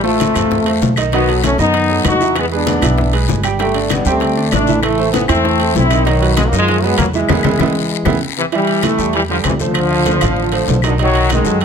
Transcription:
Already playing: A1
0.03 A3 F4 A4 C5, high bongo, high conga
0.20 high bongo, high conga, high timbale, low timbale, short guiro
0.34 E2 C3 C4 E5, low conga, high timbale, short guiro, claves
0.51 high bongo, high conga, low conga, long guiro
0.66 A3 A4 C5, high bongo, high conga, high timbale
0.81 B1, high bongo, low bongo, high conga, low timbale, short guiro
0.96 D#3 D#4 D#5, high bongo, high conga, high timbale, short guiro, claves
1.12 D#3 F#3 B3 D#4 D#5, high bongo, high conga, high timbale, long guiro
1.28 F#3 F#4 A4, high bongo, high conga, high timbale
1.43 A3 C#4, high bongo, high conga, high timbale, low timbale, short guiro, claves
1.58 F#2 D#3 B3 D#4 D#5, short guiro
1.74 high bongo, high conga, high timbale, long guiro
1.89 F#3 F#4 A4, high bongo, high conga
2.05 E2 D#4 F#4, high bongo, low bongo, high conga, high timbale, low timbale, short guiro, claves
2.21 E3 E4 E5, high bongo, short guiro
2.36 G#3 B3, high bongo, high conga, high timbale, long guiro, claves
2.51 G#3 B3 G#4 B4, high bongo, high conga
2.55 D4
2.67 high bongo, high conga, high timbale, low timbale, short guiro
2.81 B1 E3 E4 E5, low conga, high timbale, short guiro, claves
2.98 high bongo, high conga, low conga, long guiro
3.13 G#3 G#4 B4, high bongo, high conga, high timbale
3.27 G1, high bongo, low bongo, high conga, low timbale, short guiro
3.43 G3 G4 G5, high bongo, high conga, high timbale, short guiro, claves
3.59 D3 G3 A3 G4 G5, high bongo, high conga, high timbale, long guiro
3.74 D4 D5, high bongo, high conga, high timbale
3.90 G3 B3, high bongo, high conga, high timbale, low timbale, short guiro, claves
4.05 D2 G3 A3 C4 G4 G5, short guiro
4.20 high bongo, high conga, high timbale, long guiro
4.37 D4 D5, high bongo, high conga
4.51 A1 A3 D4, high bongo, low bongo, high conga, high timbale, low timbale, short guiro, claves
4.67 E3 E4 E5, high bongo, high conga, short guiro
4.82 E3 A3, high bongo, high timbale, long guiro, claves
4.98 A3 A4 C5, high bongo, high conga
5.12 E3 B3, high bongo, high conga, high timbale, low timbale, short guiro
5.28 E2 E3 A3 C4 E4 E5, low conga, high timbale, short guiro, claves
5.45 high bongo, high conga, long guiro
5.60 A3 A4 C5, high bongo, high conga, high timbale
5.75 B1 C4 E4, high bongo, low bongo, high conga, low timbale, short guiro
5.90 D#3 D#4 D#5, high bongo, high conga, high timbale, short guiro, claves
6.05 D#3 F#3 D#4 D#5, high bongo, high conga, high timbale, long guiro
6.22 F#3 F#4 B4, high bongo, high conga, high timbale
6.36 D#3 G#3, high bongo, high conga, high timbale, low timbale, short guiro, claves
6.47 F#3 A#3
6.52 F#2 D#3 D#4 D#5, short guiro
6.58 F3 G#3
6.68 high bongo, high conga, high timbale, long guiro
6.82 F#3 G#3 B3 F#4 B4, high bongo, high conga
6.98 E2 F#3 A#3, high bongo, low bongo, high conga, high timbale, low timbale, short guiro, claves
7.13 E3 G#3 E4 E5, high bongo, short guiro
7.29 E2 B3 E4 G#4, low bongo, high conga, high timbale, long guiro, claves
7.43 E2 B3 E4 G#4, low bongo, high conga, high timbale, long guiro, claves
7.59 E2 B3 E4 G#4, low bongo, high conga, high timbale, long guiro, claves
8.05 E2 B3 E4 G#4, low bongo, high conga, high timbale, long guiro, claves
8.37 C3 E3
8.52 E3 G3 E4 E5, high conga, high timbale, long guiro
8.67 high conga, high timbale
8.82 E3 A3 E4 E5, high conga, high timbale, low timbale, short guiro, claves
8.98 E2 G3 G4 A4, short guiro
9.13 E3 G3, high conga, high timbale, long guiro
9.29 D3 F3 G3 G4 A4, high conga
9.44 D2 C3 E3, high conga, high timbale, low timbale, short guiro, claves
9.59 D3 F3 A3 A4 C5, high conga, short guiro
9.74 high conga, high timbale, long guiro, claves
9.91 F3 F4 F5, high conga
10.06 A3 A4 C5, high conga, high timbale, low timbale, short guiro
10.21 A1 F3 F4 F5, low conga, high timbale, short guiro, claves
10.36 high conga, long guiro
10.52 A3 A4 C5, high conga, high timbale
10.68 B1, high conga, low timbale, short guiro
10.82 B2 D#3 D#4 D#5, high conga, high timbale, short guiro, claves
10.87 D3
10.98 D#3 D#4 D#5, high conga, high timbale, long guiro
11.02 F#3
11.15 high conga, high timbale
11.29 D#3 G#3 D#4 D#5, high conga, high timbale, low timbale, short guiro, claves
11.44 F#2 F#3 F#4 A4, short guiro
11.61 D#3, high conga, high timbale, long guiro

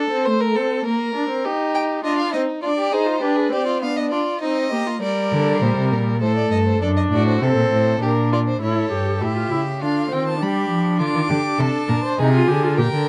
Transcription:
Already playing: A4
0.10 C4
0.25 A3 C5
0.41 A#4
0.55 C4 A4
0.85 A#3 A#4
1.15 D4
1.30 C4
1.45 D#4 G4
1.75 G5
2.04 D4 F4 D#5
2.18 F5
2.33 C4 D#4 D#5
2.62 D4 F4 D5
2.77 G4
2.92 D#4 G#4 C5
3.06 F4
3.21 D4 G4 B4
3.36 G#4
3.52 C4 G4 D5
3.66 F4
3.82 B3 D4 F5
3.97 D#5
4.11 D4 F4 D5
4.41 C4 D#4 D#5
4.71 A#3 G4
4.87 F4
5.02 G3 A#4 D5
5.32 D3
5.62 A#2 C5
5.77 C3
5.92 A#2 A#4
6.21 A2 A3 A4 C5
6.37 D5
6.51 G2 D#5
6.67 C5
6.82 F#2 D4 A4 D5
6.97 D#5
7.12 A2 F#4 D5
7.28 C5
7.41 C3 C4 A4
7.56 A#2
7.72 A2 C5
8.01 A#2 D4 G4 A#4
8.33 F4 D5
8.48 C5
8.61 A2 E4 A4 C#5
8.92 G2 G4
9.21 A2 E4 G4 E5
9.36 F4
9.51 C#3 E4
9.81 D3 D4 F4 F5
10.10 D#3 C4 G5
10.28 A5
10.41 G3 D4 G4 B5
10.71 F3
11.00 D3 F4 D6
11.15 D#3
11.29 D3 G4
11.58 C3 A4 A5
11.88 A#2 A#4
12.03 C5
12.19 C3 D#4 G#4 G#5
12.33 F4
12.48 D3 G4
12.63 F4
12.77 A#2 G4 A#4 G5
12.94 D3

